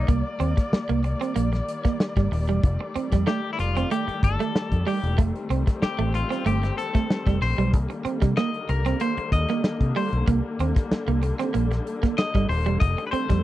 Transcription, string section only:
0.00 12.78 D#3 medium
0.00 12.78 G3 medium
0.00 2.59 A#3 medium
0.00 5.14 D5 medium
2.63 7.69 A3 medium
5.19 7.71 C4 medium
7.74 13.43 D3 medium
7.74 12.78 A#3 medium
12.81 13.43 D#3 medium
12.81 13.43 G3 medium
12.81 13.43 A3 medium

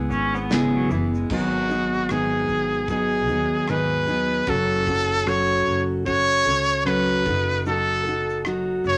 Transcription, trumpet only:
1.34 2.13 F#4 medium
2.11 2.89 G#4 medium
2.91 3.71 G#4 medium
3.70 4.51 B4 medium
4.49 5.30 A4 medium
5.28 5.83 C#5 medium
6.07 6.82 C#5 loud
6.86 7.62 B4 medium
7.67 8.42 A4 medium
8.88 8.98 C#5 loud

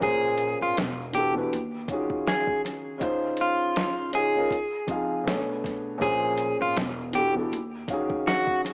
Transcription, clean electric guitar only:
0.03 0.58 G#4 loud
0.62 0.76 F4 medium
1.15 1.33 G4 medium
2.28 2.61 G#4 medium
3.41 4.11 F4 medium
4.15 5.98 G#4 medium
6.02 6.57 G#4 loud
6.62 6.76 F4 medium
7.15 7.34 G4 medium
8.27 8.61 F#4 medium

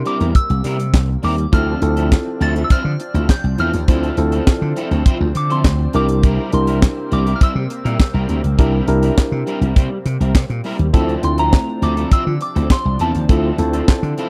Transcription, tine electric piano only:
0.00 0.25 D4 medium
0.00 0.25 E4 medium
0.00 0.25 G4 medium
0.00 0.25 A#4 medium
1.52 1.72 C4 medium
1.52 1.72 E4 medium
1.52 1.72 F4 medium
1.52 1.73 A4 medium
1.82 2.60 C4 medium
1.82 2.60 E4 medium
1.82 2.60 F4 medium
1.82 2.61 A4 medium
3.88 4.08 C4 medium
3.88 4.08 E4 medium
3.88 4.08 F4 medium
3.88 4.08 C5 medium
4.17 4.96 C4 medium
4.17 4.96 E4 medium
4.17 4.96 F4 medium
4.17 4.96 A4 medium
5.94 6.41 D4 medium
5.94 6.41 E4 medium
5.94 6.41 G4 medium
5.94 6.41 A#4 medium
6.53 7.31 D4 medium
6.53 7.31 E4 medium
6.53 7.31 G4 medium
6.53 7.31 A#4 medium
8.58 8.78 D4 medium
8.58 8.78 E4 medium
8.58 8.78 G4 medium
8.58 8.78 A#4 medium
8.88 9.66 D4 medium
8.88 9.66 E4 medium
8.88 9.66 G4 medium
8.88 9.67 A#4 loud
10.93 11.13 C4 medium
10.93 11.13 E4 medium
10.93 11.14 F4 medium
10.93 11.14 A4 medium
11.23 12.02 A3 medium
11.23 12.01 C4 medium
11.23 12.02 E4 medium
11.23 12.02 F4 medium
13.29 13.49 C4 medium
13.29 13.49 E4 medium
13.29 13.49 F4 medium
13.29 13.49 A4 medium
13.58 14.29 C4 medium
13.58 14.29 E4 medium
13.58 14.29 F4 medium
13.58 14.29 A4 medium

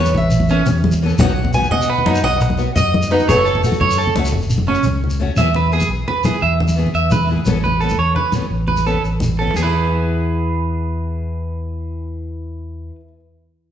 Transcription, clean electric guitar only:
0.51 0.67 C#4 medium
1.21 muted clean electric guitar stroke medium
1.72 1.88 D#5 loud
1.90 2.06 B4 medium
2.06 2.23 D#4 medium
2.24 2.40 D#5 loud
2.42 muted clean electric guitar stroke medium
2.77 2.93 D#5 loud
3.12 3.27 D#4 medium
3.29 3.44 C#5 loud
3.45 3.61 A4 medium
3.81 3.97 C#5 loud
3.98 4.14 A4 medium
4.68 4.84 C#4 medium
5.38 5.53 E5 medium
5.56 5.71 B4 medium
5.73 5.88 G#4 medium
6.08 6.23 B4 medium
6.25 6.41 G#4 medium
6.42 6.58 E5 medium
6.95 7.10 E5 medium
7.12 7.28 B4 medium
7.64 7.80 B4 medium
7.80 7.97 A4 medium
7.99 8.15 C#5 medium
8.16 8.32 B4 medium
8.68 8.84 B4 medium
8.87 9.02 A4 medium
9.39 9.55 A4 medium
9.51 muted clean electric guitar stroke medium
9.56 12.89 G#4 medium
9.62 12.95 B4 medium

